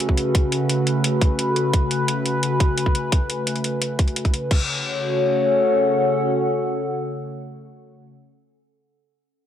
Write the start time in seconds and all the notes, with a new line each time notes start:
Already playing: C#3 A3 C#4 F#4 A4 B4 F#5
0.00 closed hi-hat
0.09 kick
0.17 closed hi-hat
0.35 kick, closed hi-hat
0.52 closed hi-hat
0.64 G#5
0.69 closed hi-hat
0.87 closed hi-hat
1.04 closed hi-hat
1.21 kick, closed hi-hat
1.39 closed hi-hat
1.56 closed hi-hat
1.73 kick, closed hi-hat
1.91 closed hi-hat
2.08 closed hi-hat
2.26 closed hi-hat
2.43 closed hi-hat
2.60 kick, closed hi-hat
2.78 closed hi-hat
2.86 kick
2.95 closed hi-hat
3.12 kick, closed hi-hat
3.30 closed hi-hat
3.47 closed hi-hat
3.56 closed hi-hat
3.64 closed hi-hat
3.82 closed hi-hat
3.99 kick, closed hi-hat
4.08 closed hi-hat
4.16 closed hi-hat
4.25 kick, closed hi-hat
4.34 closed hi-hat
4.51 C#3 A3 C#4 F#4 C#5, kick, crash
4.56 A4
4.61 F#5